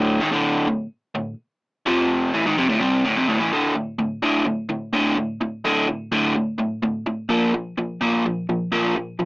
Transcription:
0.00 0.19 D2 loud
0.00 0.19 A2 loud
0.00 0.20 D3 medium
0.20 0.31 G#2 medium
0.20 0.31 D#3 loud
0.32 0.66 D2 medium
0.32 0.67 A2 medium
0.32 0.67 D3 medium
0.67 0.86 D2 medium
0.67 0.86 A2 medium
1.15 1.33 D2 medium
1.15 1.34 A2 medium
1.86 2.32 F2 loud
1.86 2.32 C3 medium
1.86 2.33 F3 loud
2.34 2.44 A2 medium
2.34 2.45 E3 medium
2.46 2.56 G#2 medium
2.46 2.57 D#3 medium
2.57 2.68 F2 medium
2.57 2.68 C3 loud
2.69 2.80 D2 loud
2.69 2.80 A2 loud
2.80 3.03 C3 medium
2.80 3.03 G3 medium
2.80 3.04 C4 medium
3.05 3.15 D2 medium
3.05 3.15 A2 loud
3.17 3.27 F2 medium
3.17 3.27 C3 loud
3.28 3.39 D2 medium
3.28 3.38 A2 medium
3.40 3.51 A2 medium
3.40 3.51 E3 medium
3.52 3.74 D2 medium
3.52 3.74 A2 medium
3.52 3.74 D3 medium
3.75 3.96 D2 medium
3.75 3.96 A2 medium
3.99 4.20 D2 medium
3.99 4.20 A2 medium
4.23 4.45 D2 medium
4.23 4.45 A2 medium
4.23 4.45 D3 medium
4.46 4.67 D2 medium
4.46 4.67 A2 medium
4.70 4.91 D2 medium
4.70 4.91 A2 medium
4.93 5.15 D2 medium
4.93 5.16 A2 medium
4.93 5.16 D3 loud
5.17 5.38 D2 medium
5.17 5.38 A2 medium
5.41 5.62 D2 medium
5.41 5.62 A2 medium
5.65 5.87 D2 medium
5.65 5.87 A2 medium
5.65 5.87 D3 medium
5.88 6.09 D2 medium
5.88 6.10 A2 medium
6.12 6.34 D2 medium
6.12 6.34 A2 medium
6.12 6.34 D3 medium
6.35 6.57 D2 medium
6.35 6.57 A2 medium
6.59 6.80 D2 medium
6.59 6.80 A2 medium
6.83 7.04 D2 medium
6.83 7.04 A2 medium
7.07 7.28 D2 medium
7.07 7.28 A2 medium
7.29 7.52 A#2 medium
7.29 7.52 F3 medium
7.29 7.52 A#3 medium
7.53 7.75 A#2 medium
7.53 7.75 F3 medium
7.78 7.99 A#2 medium
7.78 7.99 F3 medium
8.01 8.23 A#2 medium
8.01 8.23 F3 medium
8.01 8.24 A#3 medium
8.25 8.46 A#2 medium
8.25 8.46 F3 medium
8.49 8.70 A#2 medium
8.49 8.70 F3 medium
8.72 8.94 A#2 medium
8.72 8.94 F3 medium
8.72 8.94 A#3 medium
8.96 9.17 A#2 medium
8.96 9.17 F3 medium
9.20 9.25 A#2 medium
9.20 9.25 F3 medium

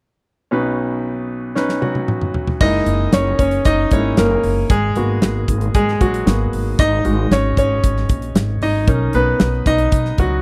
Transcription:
0.51 2.57 B1 medium
0.51 2.57 B2 medium
0.51 1.35 C#4 medium
0.51 1.35 D#4 medium
0.51 1.36 B4 medium
1.55 2.39 C#4 medium
1.55 2.40 D#4 medium
1.55 2.40 B4 medium
1.55 snare soft
1.69 snare soft
1.82 2.57 F#3 medium
1.82 2.63 F#4 medium
1.82 high tom medium
1.95 high tom soft
2.08 mid tom medium
2.21 mid tom medium
2.34 floor tom medium
2.47 floor tom medium
2.61 2.82 F#1 medium
2.61 2.96 G#3 medium
2.61 2.96 A#3 medium
2.61 3.10 D#4 medium
2.61 2.96 E4 medium
2.61 3.15 D#5 loud
2.61 kick loud
2.61 crash medium
2.86 3.08 F#1 medium
2.86 closed hi-hat medium
3.12 3.34 F#1 medium
3.12 3.38 C#4 medium
3.12 3.37 C#5 medium
3.12 snare loud
3.12 closed hi-hat medium
3.39 3.61 F#1 medium
3.39 3.64 C#4 medium
3.39 3.66 C#5 medium
3.39 kick medium
3.39 closed hi-hat medium
3.51 closed hi-hat medium
3.65 3.87 F#1 medium
3.65 3.90 D#4 medium
3.65 3.90 D#5 loud
3.65 kick medium
3.65 closed hi-hat medium
3.91 4.13 G#1 medium
3.91 4.15 G#3 soft
3.91 4.15 A#3 soft
3.91 4.17 C#4 medium
3.91 4.16 E4 soft
3.91 4.19 C#5 loud
3.91 kick medium
3.91 closed hi-hat medium
4.17 4.39 F#1 medium
4.17 4.67 A#3 medium
4.17 4.72 A#4 medium
4.17 snare loud
4.17 closed hi-hat medium
4.44 4.65 F#1 medium
4.44 open hi-hat medium
4.70 4.91 G#1 medium
4.70 5.71 G#3 medium
4.70 5.73 G#4 loud
4.70 kick loud
4.70 closed hi-hat medium
4.96 5.18 G#1 medium
4.96 6.24 A#3 soft
4.96 6.25 B3 soft
4.96 6.00 F#4 medium
4.96 closed hi-hat medium
5.22 5.44 G#1 medium
5.22 snare medium
5.22 closed hi-hat medium
5.48 5.69 G#1 medium
5.48 kick medium
5.48 closed hi-hat medium
5.61 closed hi-hat medium
5.74 5.96 G#1 medium
5.74 5.92 G#3 medium
5.74 5.91 G#4 loud
5.74 kick medium
5.74 closed hi-hat medium
5.88 6.00 G#4 medium
5.88 snare soft
6.01 6.22 A#1 medium
6.01 6.75 F#3 medium
6.01 6.25 F#4 medium
6.01 kick medium
6.01 closed hi-hat medium
6.14 closed hi-hat medium
6.26 6.48 G#1 medium
6.26 6.50 A#3 soft
6.26 6.50 B3 soft
6.26 6.50 F#4 soft
6.26 snare loud
6.26 closed hi-hat medium
6.53 6.74 G#1 medium
6.53 open hi-hat medium
6.79 7.00 G#1 medium
6.79 7.03 D#4 medium
6.79 7.28 D#5 loud
6.79 kick loud
6.79 closed hi-hat medium
7.04 7.26 G#1 medium
7.04 7.79 G#3 soft
7.04 7.79 D#4 soft
7.04 7.79 F#4 soft
7.04 closed hi-hat medium
7.31 7.52 G#1 medium
7.31 7.56 C#4 medium
7.31 7.56 C#5 medium
7.31 snare medium
7.31 closed hi-hat medium
7.57 7.79 G#1 medium
7.57 8.58 C#4 medium
7.57 8.65 C#5 loud
7.57 kick medium
7.57 closed hi-hat medium
7.84 8.05 G#1 medium
7.84 kick medium
7.84 closed hi-hat medium
7.97 snare soft
8.09 8.31 A#1 medium
8.09 kick medium
8.09 closed hi-hat medium
8.22 closed hi-hat medium
8.35 8.57 G#1 medium
8.35 snare medium
8.35 closed hi-hat medium
8.61 8.83 G#1 medium
8.61 8.88 D#4 medium
8.61 9.16 D#5 medium
8.61 open hi-hat medium
8.88 9.09 B1 loud
8.88 10.42 C#4 medium
8.88 9.66 D#4 medium
8.88 10.42 A#4 medium
8.88 kick loud
8.88 closed hi-hat medium
9.13 9.35 B1 medium
9.13 9.63 B3 medium
9.13 9.63 B4 medium
9.13 closed hi-hat medium
9.40 9.62 B1 medium
9.40 snare loud
9.40 closed hi-hat medium
9.66 9.87 B1 medium
9.66 10.15 D#4 medium
9.66 10.15 D#5 loud
9.66 kick medium
9.66 closed hi-hat medium
9.78 closed hi-hat medium
9.92 10.13 B1 medium
9.92 kick medium
9.92 closed hi-hat medium
10.05 snare soft
10.18 10.40 C#2 medium
10.18 10.42 F#3 medium
10.18 10.42 F#4 medium
10.18 kick medium
10.18 closed hi-hat medium

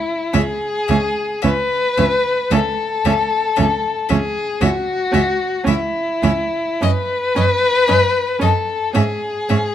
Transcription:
0.00 0.36 E4 loud
0.33 0.43 C#2 medium
0.33 0.41 C#4 medium
0.33 1.44 G#4 loud
0.33 0.42 E5 medium
0.88 0.98 C#2 medium
0.88 0.98 C#4 medium
0.88 0.96 E5 medium
1.42 1.53 C#2 medium
1.42 1.52 C#4 medium
1.42 2.54 B4 loud
1.42 1.50 E5 medium
1.98 2.06 C#2 medium
1.98 2.06 C#4 medium
1.98 2.06 E5 medium
2.51 2.59 C#2 medium
2.51 2.60 C#4 medium
2.51 4.11 A4 medium
2.51 2.59 E5 medium
3.05 3.13 C#2 medium
3.05 3.14 C#4 medium
3.05 3.13 E5 medium
3.56 3.67 C#2 medium
3.56 3.65 C#4 medium
3.56 3.64 E5 medium
4.09 4.19 C#2 medium
4.09 4.18 C#4 medium
4.09 4.63 G#4 loud
4.09 4.17 E5 medium
4.61 4.70 C#2 medium
4.61 4.69 C#4 medium
4.61 5.66 F#4 loud
4.61 4.69 E5 medium
5.12 5.22 C#2 medium
5.12 5.20 C#4 medium
5.12 5.22 E5 medium
5.64 5.75 C#2 medium
5.64 5.72 C#4 medium
5.64 6.86 E4 medium
5.64 5.75 E5 medium
6.23 6.31 C#2 medium
6.23 6.31 C#4 medium
6.23 6.31 E5 medium
6.81 6.90 F#2 medium
6.81 6.89 C#4 medium
6.81 8.44 B4 loud
6.81 6.91 D#5 medium
7.35 7.45 F#2 medium
7.35 7.43 C#4 medium
7.35 7.45 D#5 medium
7.88 7.98 F#2 medium
7.88 7.96 C#4 medium
7.88 7.96 D#5 medium
8.39 8.50 F#2 medium
8.39 8.47 C#4 medium
8.39 8.93 A4 medium
8.39 8.50 D#5 medium
8.94 9.04 G#2 medium
8.94 9.02 C#4 medium
8.94 9.75 G#4 loud
8.94 9.03 E5 medium
9.49 9.58 G#2 medium
9.49 9.57 C#4 medium
9.49 9.57 E5 medium

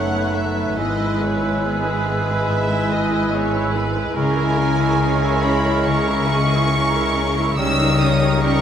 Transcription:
0.00 0.78 F#1 soft
0.00 0.78 F#2 soft
0.00 0.81 F#2 soft
0.00 0.56 F#3 soft
0.00 0.13 A3 soft
0.00 0.76 A3 soft
0.00 0.79 A3 soft
0.00 0.34 B3 soft
0.00 0.76 B3 soft
0.00 0.13 D#4 soft
0.00 0.79 D#4 soft
0.00 0.13 A4 soft
0.00 0.81 A4 soft
0.00 4.13 B4 soft
0.00 0.78 C#5 medium
0.00 0.35 F#5 medium
0.00 0.78 F#6 soft
0.13 0.35 B3 soft
0.13 0.81 D#4 soft
0.13 0.35 B4 soft
0.34 0.56 A3 soft
0.34 1.20 B3 soft
0.34 0.56 A4 soft
0.34 0.77 E5 medium
0.55 0.82 F#3 soft
0.55 0.77 B3 soft
0.55 0.77 B4 soft
0.76 4.13 G#1 soft
0.76 4.13 G#2 medium
0.76 2.47 G#2 soft
0.76 1.62 G#3 soft
0.76 4.16 G#3 soft
0.76 0.98 B3 soft
0.76 1.61 E4 soft
0.76 4.16 E4 medium
0.76 0.98 G#4 soft
0.76 1.63 B4 soft
0.76 1.20 D#5 medium
0.76 3.91 E6 soft
0.99 2.26 G#3 soft
0.99 1.21 E4 soft
0.99 1.21 B4 soft
1.21 2.05 B3 soft
1.21 1.43 B3 soft
1.21 1.42 G#4 soft
1.21 1.64 C#5 medium
1.42 1.84 E4 soft
1.42 1.64 E4 soft
1.42 1.64 B4 soft
1.62 3.99 G#3 medium
1.62 1.84 B3 soft
1.62 3.99 E4 medium
1.62 2.46 G#4 medium
1.62 3.32 G#4 soft
1.62 1.84 G#4 soft
1.62 3.75 B4 medium
1.85 3.11 E4 soft
1.85 2.07 E4 soft
1.85 2.07 B4 soft
2.06 2.68 B3 soft
2.06 2.28 B3 soft
2.06 2.28 G#4 soft
2.27 2.89 G#3 soft
2.27 2.50 E4 soft
2.27 2.50 B4 soft
2.48 4.20 G#2 soft
2.48 2.69 B3 soft
2.48 2.69 G#4 soft
2.48 2.91 E5 medium
2.70 2.92 E4 soft
2.70 2.91 B4 soft
2.90 3.95 G#3 soft
2.90 3.12 B3 soft
2.90 3.12 G#4 soft
2.90 3.32 D#5 medium
3.11 3.33 E4 soft
3.11 3.53 E4 soft
3.11 3.33 B4 soft
3.33 3.52 B3 soft
3.33 3.52 G#4 soft
3.33 5.01 G#4 soft
3.33 3.75 C#5 medium
3.53 3.75 E4 soft
3.53 4.80 E4 soft
3.53 3.74 B4 soft
3.74 3.96 B3 soft
3.74 4.20 B3 soft
3.74 3.96 G#4 soft
3.74 4.16 B4 medium
3.95 4.37 G#3 soft
3.95 4.17 E4 soft
3.95 4.17 B4 soft
4.15 7.54 C#2 medium
4.15 5.85 C#3 medium
4.15 7.55 C#3 medium
4.15 7.54 G#3 medium
4.15 7.27 G#3 medium
4.15 4.36 C#4 soft
4.15 7.27 E4 medium
4.15 7.55 E4 medium
4.15 4.36 G#4 soft
4.15 7.27 A#4 medium
4.15 5.01 A#4 medium
4.15 5.40 G#5 medium
4.15 7.54 C#6 medium
4.37 5.64 G#3 soft
4.37 4.59 E4 soft
4.37 4.59 A#4 soft
4.58 5.43 A#3 soft
4.58 4.80 C#4 soft
4.58 4.80 G#4 soft
4.79 5.01 E4 soft
4.79 5.22 E4 soft
4.79 5.01 A#4 soft
5.01 5.21 C#4 medium
5.01 5.21 G#4 soft
5.01 6.71 G#4 medium
5.01 5.87 C#5 medium
5.22 5.44 E4 soft
5.22 5.44 A#4 soft
5.43 6.06 A#3 soft
5.43 5.65 C#4 soft
5.43 5.65 G#4 soft
5.43 5.86 B5 medium
5.65 6.28 G#3 soft
5.65 5.87 E4 soft
5.65 5.87 A#4 soft
5.85 7.58 C#3 medium
5.85 6.06 C#4 medium
5.85 6.06 G#4 medium
5.85 6.29 A#4 medium
5.85 7.58 C#6 medium
6.07 7.14 A#3 soft
6.07 6.30 E4 soft
6.07 6.29 A#4 soft
6.29 7.36 G#3 soft
6.29 6.51 C#4 medium
6.29 6.51 G#4 medium
6.29 6.73 G#4 medium
6.50 6.72 E4 soft
6.50 6.93 E4 soft
6.50 6.72 A#4 soft
6.72 6.93 C#4 soft
6.72 7.62 G#4 medium
6.72 6.93 G#4 soft
6.72 7.59 A#4 medium
6.94 7.62 E4 soft
6.94 7.16 E4 medium
6.94 7.16 A#4 medium
7.15 7.99 A#3 soft
7.15 7.38 C#4 medium
7.15 7.38 G#4 medium
7.37 7.62 G#3 soft
7.37 7.59 E4 medium
7.37 7.59 A#4 soft
7.57 8.61 C#2 medium
7.57 8.61 C#3 medium
7.57 8.61 G3 medium
7.57 7.78 C#4 medium
7.57 8.61 D#4 medium
7.57 7.78 G4 medium
7.57 8.61 A#4 medium
7.57 8.44 C#5 medium
7.57 8.61 D#6 medium
7.57 8.00 E6 medium
7.80 8.61 G3 soft
7.80 8.01 D#4 medium
7.80 8.01 A#4 medium
8.00 8.61 A#3 soft
8.00 8.22 C#4 medium
8.00 8.22 G4 medium
8.00 8.43 D#6 medium
8.21 8.43 D#4 medium
8.21 8.61 D#4 soft
8.21 8.43 A#4 medium
8.42 8.61 C#4 medium
8.42 8.61 G4 medium
8.42 8.61 A#4 medium
8.42 8.61 C#6 medium

